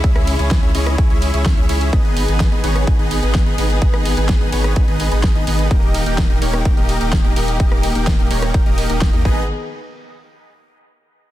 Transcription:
<<
  \new Staff \with { instrumentName = "Supersaw synth" } { \time 4/4 \key gis \minor \tempo 4 = 127 <cis' e' gis' cis'' e''>8. <cis' e' gis' cis'' gis''>8 <cis' e' gis' cis'' e''>16 <cis' e' gis' cis'' dis''>8 <cis' gis' gis''>16 <cis' e' gis' cis'' e''>8 <cis' e' gis' cis'' e''>8 <cis' e' gis' cis'' e''>16 <cis' e' gis' cis'' e''>8 | <b dis' b' dis''>8. <b dis' gis' b' gis''>8 <b dis' gis' b' dis''>16 <b dis' gis' b' cis''>8 <b dis' gis' b'>16 <b dis' gis' b' dis''>8 <b dis' gis' b' dis''>8 <b dis' gis' b' dis''>16 <b dis' gis' b' dis''>8 | <b dis' gis' dis''>8. <b dis' gis' b' gis''>8 <b dis' gis' b' dis''>16 <b dis' gis' b' cis''>8 <b dis' gis' b' gis''>16 <b dis' gis' b' dis''>8 <b dis' gis' b' dis''>8 <b dis' gis' b' dis''>16 <b dis' gis' b' dis''>8 | <ais dis' g' ais' dis''>8. <ais dis' g' ais' g''>8 <ais dis' g' ais' dis''>16 <ais dis' g' ais' cis''>8 r16 <ais dis' g' ais' dis''>8 <ais dis' g' ais' dis''>8 <ais dis' g' ais' dis''>16 <ais dis' g' ais' dis''>8 |
<ais dis' g' ais' dis''>8. <ais dis' g' ais' g''>8 <ais dis' g' ais' dis''>16 <ais dis' g' ais' cis''>8 <ais dis' g' ais' g''>16 <ais dis' g' ais' dis''>8 <ais dis' g' ais' dis''>8 <ais dis' g' ais' dis''>16 <b dis' gis' b' dis''>8 | r1 | }
  \new Staff \with { instrumentName = "String section" } { \time 4/4 \key gis \minor << { <gis e'>1 | <b gis'>1~ | <b gis'>1 | <ais g'>1~ |
<ais g'>2.~ <ais g'>8 <dis b gis'>8 | r1 | } \\ { cis1 | dis1~ | dis1~ | dis1~ |
dis2.~ dis8 r8 | r1 | } >> }
  \new Staff \with { instrumentName = "Sub bass" } { \clef bass \time 4/4 \key gis \minor cis,8. cis,8 cis,16 cis,8 cis,16 cis,8 cis,8 cis,16 cis,8 | gis,,8. gis,,8 gis,,16 gis,,8 gis,,16 gis,,8 gis,,8 gis,,16 gis,,8 | gis,,8. gis,,8 gis,,16 gis,,8 gis,,16 gis,,8 gis,,8 gis,,16 gis,,8 | dis,,8. dis,,8 dis,,16 dis,,8 dis,,16 dis,,8 dis,,8 dis,,16 dis,,8 |
dis,,8. dis,,8 dis,,16 dis,,8 dis,,16 dis,,8 dis,,8 dis,16 gis,,8 | r1 | }
  \new DrumStaff \with { instrumentName = "Drums" } \drummode { \time 4/4 <hh bd cymr>16 <hh ss>16 <hho cymr>16 hh16 <hh bd cymr sn>16 hh16 <hho cymr>16 <hh ss>16 <hh bd cymr>16 hh16 <hho cymr>16 hh16 <hho bd cymr sn>16 hh16 <hho cymr>16 hh16 | <hh bd cymr>16 hh16 <hho cymr>16 hh16 <hh bd cymr sn>16 hh16 <hho cymr>16 <hh ss>16 <hh bd cymr>16 hh16 <hho cymr>16 hh16 <hh bd cymr sn>16 hh16 <hho cymr>16 hh16 | <hh bd cymr>16 <hh ss>16 <hho cymr>16 hh16 <hh bd cymr sn>16 hh16 <hho cymr>16 <hh ss>16 <hh bd cymr>16 hh16 <hho cymr>16 hh16 <hho bd cymr sn>16 hh16 <hho cymr>16 hh16 | <hh bd cymr>16 hh16 <hho cymr>16 hh16 <hh bd cymr sn>16 hh16 <hho cymr>16 <hh ss>16 <hh bd cymr>16 hh16 <hho cymr>16 hh16 <hh bd cymr sn>16 hh16 <hho cymr>16 hh16 |
<hh bd cymr>16 <hh ss>16 <hho cymr>16 hh16 <hh bd cymr sn>16 hh16 <hho cymr>16 <hh ss>16 <hh bd cymr>16 hh16 <hho cymr>16 hh16 <hho bd cymr sn>16 hh16 bd8 | r4 r4 r4 r4 | }
>>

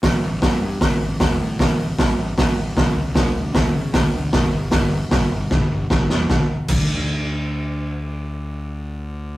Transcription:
<<
  \new Staff \with { instrumentName = "Fingered electric bass" } { \clef bass \time 4/4 \key d \minor \tempo 4 = 153 a,,8 a,,8 a,,8 g,8 a,,8 a,,8 e,,8 a,8 | a,,4 a,,8 a,,8 a,,8 a,,8 a,,8 cis,8 | d,8 d,8 d,8 cis8 d,8 d,8 f,,8 g,,8 | g,,4 g,,8 g,,8 g,,8 g,,8 g,,8 e,8 |
d,8 r8 d,2.~ | d,1 | }
  \new DrumStaff \with { instrumentName = "Drums" } \drummode { \time 4/4 <hho bd sn>4 <hho bd sn>4 <hho bd sn>4 <hho bd sn>4 | <hho bd sn>4 <hho bd sn>4 <hho bd sn>4 <hho bd sn>4 | <hho bd sn>4 <hho bd sn>4 <hho bd sn>4 <hho bd sn>4 | <hho bd sn>4 <hho bd sn>4 <bd sn>4 <bd sn>8 sn8 |
<bd sn>4 <cymc bd>4 r4 r4 | r4 r4 r4 r4 | }
>>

